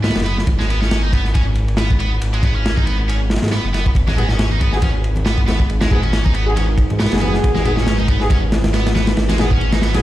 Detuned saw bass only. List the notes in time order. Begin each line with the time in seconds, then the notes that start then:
Already playing: G#2
0.16 F#1
0.47 G#1
2.22 G#1
3.42 G#2
3.64 F#1
3.95 G#1
5.70 G#1
6.90 G#2
7.12 F#1
7.44 G#1
9.17 G#1